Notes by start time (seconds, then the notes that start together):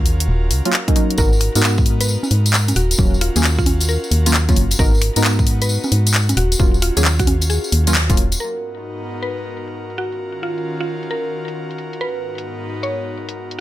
Already playing: D#2 C#4 F4 F#4 A#4
0.06 open hi-hat
0.20 closed hi-hat
0.28 D#1
0.51 C#2, open hi-hat
0.65 F#3 A#3 C#4 F4, closed hi-hat
0.73 clap
0.88 F#3 A#3 C#4 D#4, kick, closed hi-hat
0.96 F#3 A#3 C#4 D#4, open hi-hat
1.10 closed hi-hat
1.18 G#1 B3 D#4 F#4 A#4, kick, tambourine
1.33 tambourine
1.41 finger snap, open hi-hat
1.55 G#2 B3 D#4 F#4 A#4, closed hi-hat, tambourine
1.63 clap, tambourine
1.78 kick, tambourine
1.86 open hi-hat
2.01 B4, closed hi-hat, tambourine
2.08 tambourine
2.23 tambourine, high conga
2.31 G#2, open hi-hat
2.46 closed hi-hat, tambourine
2.54 clap, tambourine
2.68 closed hi-hat, tambourine, high conga
2.76 D#1 C#4 F4 F#4, open hi-hat
2.91 closed hi-hat, tambourine
2.99 D#1 F#3 A#3 C#4 F4, kick, tambourine
3.14 tambourine
3.21 F4, finger snap, open hi-hat
3.36 D#2 F#3 A#3 C#4 G#4, closed hi-hat, tambourine
3.43 clap, tambourine
3.59 F4, kick, tambourine
3.66 open hi-hat, high conga
3.80 closed hi-hat, tambourine
3.88 A#4, tambourine
4.04 tambourine
4.11 D#2, open hi-hat
4.26 F#3 A#3 C#4 F4, closed hi-hat, tambourine
4.34 clap, tambourine
4.49 F#3 A#3 C#4 F4, kick, closed hi-hat, tambourine
4.56 F#1, open hi-hat
4.71 closed hi-hat, tambourine
4.79 G#1 B3 D#4 F#4 A#4, kick, tambourine
4.94 tambourine
5.02 finger snap, open hi-hat
5.16 G#2 B3 D#4 F#4 A#4, closed hi-hat, tambourine
5.24 clap, tambourine
5.39 kick, tambourine
5.47 open hi-hat
5.62 B4, closed hi-hat, tambourine
5.69 tambourine
5.84 tambourine, high conga
5.92 G#2, open hi-hat
6.06 closed hi-hat, tambourine
6.14 clap, tambourine
6.29 closed hi-hat, tambourine, high conga
6.37 D#1 C#4 F4 F#4, open hi-hat
6.52 closed hi-hat, tambourine
6.59 D#1 F#3 A#3 C#4 F4, kick, tambourine
6.74 tambourine
6.82 F4, finger snap, open hi-hat
6.97 D#2 F#3 A#3 C#4 G#4, closed hi-hat, tambourine
7.05 clap, tambourine
7.19 F#4, kick, closed hi-hat, tambourine
7.27 open hi-hat, high conga
7.41 closed hi-hat, tambourine
7.50 G#4, tambourine
7.64 tambourine
7.72 D#2, open hi-hat
7.87 F#3 A#3 C#4 F4, closed hi-hat, tambourine
7.95 clap, tambourine
8.09 D#1 F#3 A#3 C#4 F4, kick, closed hi-hat, tambourine
8.17 open hi-hat
8.32 closed hi-hat, tambourine
8.40 G#2 B3 D#4 F#4 A#4
8.77 closed hi-hat
9.22 B4, closed hi-hat
9.68 closed hi-hat
9.90 closed hi-hat
9.98 D#3 C#4 F4 F#4, closed hi-hat
10.12 closed hi-hat
10.43 F4
10.58 closed hi-hat
10.81 F4
11.03 closed hi-hat
11.11 A#4
11.48 closed hi-hat
11.71 closed hi-hat
11.78 closed hi-hat
11.93 closed hi-hat
12.01 G#2 B3 D#4 B4
12.38 closed hi-hat
12.83 C#5, closed hi-hat
13.29 closed hi-hat
13.51 closed hi-hat